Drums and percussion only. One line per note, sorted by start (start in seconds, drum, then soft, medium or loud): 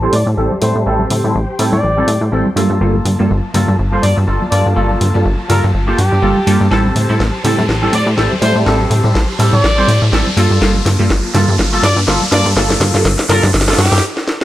0.03 tambourine soft
0.13 open hi-hat loud
0.13 high conga medium
0.27 tambourine medium
0.38 tambourine medium
0.51 tambourine soft
0.51 high conga medium
0.62 open hi-hat loud
0.76 tambourine medium
0.86 tambourine medium
0.99 tambourine soft
0.99 high conga loud
1.10 open hi-hat loud
1.10 low conga medium
1.24 tambourine medium
1.35 tambourine medium
1.35 high conga medium
1.50 tambourine soft
1.59 open hi-hat loud
1.72 tambourine medium
1.72 high conga medium
1.84 tambourine medium
1.97 tambourine soft
2.08 open hi-hat loud
2.08 high conga medium
2.22 tambourine medium
2.33 tambourine medium
2.46 tambourine soft
2.46 high conga medium
2.57 open hi-hat loud
2.72 tambourine medium
2.81 tambourine medium
2.95 tambourine soft
2.95 high conga loud
3.05 open hi-hat loud
3.05 low conga medium
3.20 tambourine medium
3.30 tambourine medium
3.30 high conga medium
3.44 tambourine soft
3.54 open hi-hat loud
3.54 low conga medium
3.69 tambourine medium
3.69 high conga loud
3.79 tambourine medium
3.94 tambourine soft
4.03 open hi-hat loud
4.03 high conga medium
4.18 tambourine medium
4.29 tambourine medium
4.42 tambourine soft
4.42 high conga medium
4.52 open hi-hat loud
4.67 tambourine medium
4.77 tambourine medium
4.90 tambourine soft
4.90 high conga medium
5.01 open hi-hat loud
5.01 low conga medium
5.15 tambourine medium
5.25 tambourine medium
5.25 high conga medium
5.39 tambourine soft
5.50 open hi-hat loud
5.50 low conga medium
5.64 tambourine medium
5.64 high conga loud
5.75 tambourine medium
5.89 tambourine soft
5.98 open hi-hat loud
5.98 high conga medium
6.13 tambourine medium
6.23 tambourine medium
6.37 tambourine soft
6.37 high conga medium
6.47 open hi-hat loud
6.61 tambourine medium
6.71 snare soft
6.71 tambourine medium
6.85 tambourine soft
6.85 high conga medium
6.95 open hi-hat loud
6.95 low conga medium
7.11 tambourine medium
7.20 snare medium
7.20 tambourine medium
7.20 high conga medium
7.35 tambourine soft
7.45 open hi-hat loud
7.45 low conga medium
7.59 tambourine medium
7.59 high conga medium
7.69 snare medium
7.69 tambourine medium
7.84 tambourine soft
7.93 open hi-hat loud
7.93 high conga medium
8.07 tambourine medium
8.17 snare medium
8.17 tambourine medium
8.32 tambourine soft
8.32 high conga medium
8.42 open hi-hat loud
8.56 tambourine medium
8.66 snare medium
8.66 tambourine medium
8.80 tambourine soft
8.80 high conga medium
8.90 open hi-hat loud
8.90 low conga medium
9.05 tambourine medium
9.15 snare medium
9.15 tambourine medium
9.15 high conga medium
9.30 tambourine soft
9.40 open hi-hat loud
9.53 tambourine medium
9.53 high conga medium
9.64 snare medium
9.64 tambourine medium
9.78 tambourine soft
9.89 open hi-hat loud
9.89 high conga medium
10.02 tambourine medium
10.13 snare medium
10.13 tambourine medium
10.27 tambourine soft
10.27 high conga medium
10.37 open hi-hat loud
10.51 tambourine medium
10.62 snare medium
10.62 tambourine medium
10.75 tambourine soft
10.75 high conga medium
10.86 snare medium
10.86 open hi-hat loud
10.86 low conga medium
10.99 tambourine medium
11.09 snare medium
11.09 tambourine medium
11.09 high conga medium
11.23 tambourine soft
11.34 snare medium
11.34 open hi-hat loud
11.34 low conga medium
11.48 tambourine medium
11.48 high conga medium
11.58 snare medium
11.58 tambourine medium
11.73 tambourine soft
11.83 snare medium
11.83 open hi-hat loud
11.83 high conga medium
11.97 tambourine medium
12.07 snare medium
12.07 tambourine medium
12.22 tambourine soft
12.22 high conga medium
12.32 snare medium
12.32 open hi-hat loud
12.45 tambourine medium
12.56 snare medium
12.56 tambourine medium
12.70 snare medium
12.70 tambourine soft
12.70 high conga loud
12.80 snare loud
12.80 open hi-hat loud
12.80 low conga medium
12.95 snare medium
12.95 tambourine medium
13.05 snare loud
13.05 tambourine medium
13.05 high conga medium
13.19 snare medium
13.19 tambourine soft
13.30 snare loud
13.30 open hi-hat loud
13.30 low conga medium
13.43 snare medium
13.43 tambourine medium
13.43 high conga medium
13.54 snare loud
13.54 tambourine medium
13.61 snare medium
13.68 snare loud
13.68 tambourine soft
13.73 snare loud
13.79 snare loud
13.79 open hi-hat loud
13.79 high conga medium
13.86 snare loud
13.92 snare medium
13.92 tambourine medium
13.98 snare medium
14.17 snare medium
14.28 snare medium